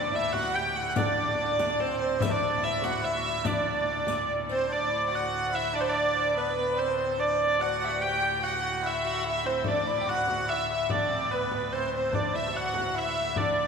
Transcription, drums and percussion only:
0.34 frame drum medium
0.96 riq medium
0.96 frame drum medium
1.59 riq medium
1.59 frame drum medium
2.21 riq medium
2.21 frame drum medium
2.82 riq medium
2.82 frame drum medium
3.45 riq medium
3.45 frame drum medium
3.86 frame drum soft
4.07 riq medium
4.07 frame drum medium
4.28 frame drum soft
4.49 riq soft
4.49 frame drum soft
9.64 frame drum medium
10.27 frame drum medium
10.90 frame drum medium
11.52 frame drum medium
12.13 frame drum medium
12.74 frame drum medium
13.36 frame drum medium
13.58 frame drum soft

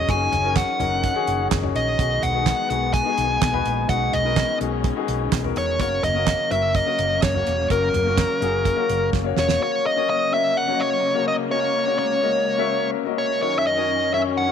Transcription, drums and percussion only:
0.09 kick loud
0.09 closed hi-hat medium
0.32 closed hi-hat medium
0.32 floor tom medium
0.56 kick loud
0.56 snare loud
0.56 clap medium
0.56 closed hi-hat medium
0.80 closed hi-hat medium
0.80 floor tom medium
1.04 kick loud
1.04 closed hi-hat medium
1.27 closed hi-hat medium
1.51 kick loud
1.51 snare loud
1.51 clap medium
1.51 closed hi-hat medium
1.63 floor tom medium
1.76 closed hi-hat medium
1.99 kick loud
1.99 closed hi-hat medium
2.23 closed hi-hat medium
2.23 floor tom medium
2.46 kick loud
2.46 snare loud
2.46 clap medium
2.46 closed hi-hat loud
2.70 closed hi-hat medium
2.94 kick loud
2.94 closed hi-hat medium
3.18 closed hi-hat medium
3.42 kick loud
3.42 snare loud
3.42 clap loud
3.42 closed hi-hat medium
3.54 floor tom medium
3.65 closed hi-hat medium
3.89 kick loud
3.89 closed hi-hat medium
4.13 closed hi-hat medium
4.13 floor tom medium
4.36 kick loud
4.36 snare loud
4.36 clap medium
4.36 closed hi-hat medium
4.61 closed hi-hat medium
4.84 kick loud
4.84 closed hi-hat medium
5.08 closed hi-hat medium
5.32 kick loud
5.32 snare loud
5.32 clap medium
5.32 closed hi-hat loud
5.44 floor tom medium
5.56 closed hi-hat medium
5.80 kick loud
5.80 closed hi-hat loud
6.03 closed hi-hat medium
6.03 floor tom medium
6.27 kick loud
6.27 snare loud
6.27 clap medium
6.27 closed hi-hat loud
6.51 closed hi-hat medium
6.75 kick loud
6.75 closed hi-hat medium
6.99 closed hi-hat medium
7.23 kick loud
7.23 snare loud
7.23 clap medium
7.23 closed hi-hat medium
7.35 floor tom medium
7.47 closed hi-hat medium
7.70 kick loud
7.70 closed hi-hat loud
7.94 closed hi-hat medium
7.94 floor tom medium
8.18 kick loud
8.18 snare loud
8.18 clap medium
8.18 closed hi-hat medium
8.42 closed hi-hat medium
8.65 kick loud
8.65 closed hi-hat medium
8.89 closed hi-hat medium
9.13 kick loud
9.13 snare medium
9.37 snare medium
9.49 snare medium

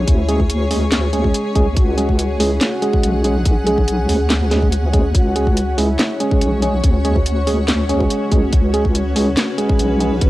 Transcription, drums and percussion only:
0.08 kick loud
0.08 closed hi-hat medium
0.29 closed hi-hat medium
0.40 kick medium
0.50 closed hi-hat medium
0.71 open hi-hat medium
0.92 snare loud
0.92 clap medium
0.92 closed hi-hat medium
1.13 closed hi-hat medium
1.24 kick medium
1.34 closed hi-hat medium
1.55 kick loud
1.55 closed hi-hat medium
1.76 kick loud
1.76 closed hi-hat medium
1.98 closed hi-hat medium
2.09 kick medium
2.19 closed hi-hat medium
2.40 open hi-hat loud
2.61 snare loud
2.61 clap medium
2.61 closed hi-hat medium
2.82 closed hi-hat medium
2.93 kick loud
3.03 closed hi-hat medium
3.24 closed hi-hat medium
3.45 kick loud
3.45 closed hi-hat medium
3.67 closed hi-hat medium
3.78 kick medium
3.88 closed hi-hat medium
4.09 open hi-hat loud
4.30 snare loud
4.30 clap loud
4.30 closed hi-hat medium
4.51 snare medium
4.51 closed hi-hat medium
4.62 kick medium
4.72 closed hi-hat medium
4.94 kick loud
4.94 closed hi-hat medium
5.15 kick loud
5.15 closed hi-hat medium
5.36 closed hi-hat medium
5.47 kick medium
5.57 closed hi-hat medium
5.78 open hi-hat medium
5.99 snare loud
5.99 clap medium
5.99 closed hi-hat medium
6.20 closed hi-hat medium
6.31 kick loud
6.41 closed hi-hat medium
6.62 closed hi-hat medium
6.84 kick loud
6.84 closed hi-hat medium
7.05 closed hi-hat medium
7.16 kick medium
7.26 closed hi-hat medium
7.47 open hi-hat medium
7.68 snare loud
7.68 clap loud
7.68 closed hi-hat medium
7.89 closed hi-hat medium
8.00 kick medium
8.10 closed hi-hat medium
8.31 kick loud
8.31 closed hi-hat medium
8.53 kick loud
8.53 closed hi-hat medium
8.74 closed hi-hat medium
8.85 kick medium
8.95 closed hi-hat medium
9.16 open hi-hat medium
9.37 snare loud
9.37 clap loud
9.37 closed hi-hat medium
9.58 closed hi-hat medium
9.69 kick loud
9.79 closed hi-hat medium
10.00 closed hi-hat medium
10.21 kick loud
10.21 closed hi-hat medium

